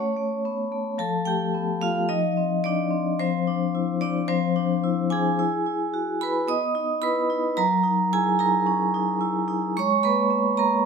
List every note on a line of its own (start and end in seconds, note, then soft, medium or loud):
0.00 0.15 A3 medium
0.00 0.67 C#4 medium
0.00 0.71 C#5 medium
0.17 0.60 A3 medium
0.45 0.72 B3 medium
0.72 0.99 A3 medium
0.98 2.06 F3 medium
0.98 1.25 A4 medium
0.98 1.26 A5 loud
1.25 1.70 A3 medium
1.25 1.78 G4 medium
1.25 1.81 G5 loud
1.54 1.82 B3 medium
1.81 2.09 A3 medium
1.81 2.08 F4 medium
1.81 2.09 F5 loud
2.09 3.15 F3 medium
2.09 2.60 D#4 medium
2.09 2.64 D#5 loud
2.37 2.81 C4 medium
2.64 3.16 D4 medium
2.64 3.19 D5 loud
2.91 3.18 C4 medium
3.19 4.24 F3 medium
3.19 3.97 C4 medium
3.19 4.00 C5 loud
3.47 3.90 D4 medium
3.75 4.01 E4 medium
4.01 4.26 D4 medium
4.01 4.28 D5 loud
4.28 5.35 F3 medium
4.28 5.07 C4 medium
4.28 5.11 C5 loud
4.56 5.00 D4 medium
4.84 5.11 E4 medium
5.10 5.38 D4 medium
5.10 6.17 G#4 medium
5.10 6.20 G#5 loud
5.39 5.65 E4 medium
5.66 6.09 E4 medium
5.94 6.20 F#4 medium
6.21 6.48 E4 medium
6.21 6.47 B4 medium
6.21 6.48 B5 loud
6.47 7.53 B3 loud
6.47 6.99 D#5 loud
6.47 7.02 D#6 loud
6.75 7.18 D#4 medium
7.02 7.29 E4 medium
7.02 7.53 B4 loud
7.02 7.56 B5 loud
7.30 7.56 D#4 medium
7.57 8.63 F#3 loud
7.57 8.08 A#4 medium
7.57 8.11 A#5 loud
7.83 8.27 D#4 medium
8.13 8.39 E4 medium
8.13 8.37 G#4 loud
8.13 8.39 G#5 loud
8.39 8.82 D#4 medium
8.39 9.18 A#4 medium
8.39 9.21 A#5 loud
8.66 9.10 C#4 medium
8.94 9.38 D#4 medium
9.21 9.48 E4 medium
9.48 9.76 D#4 medium
9.77 10.83 G#3 medium
9.77 10.03 C#5 loud
9.77 10.04 C#6 loud
10.03 10.47 A#3 medium
10.03 10.55 B4 medium
10.03 10.58 B5 loud
10.30 10.58 B3 medium
10.57 10.85 A#3 medium
10.57 10.84 A#4 medium
10.57 10.85 A#5 loud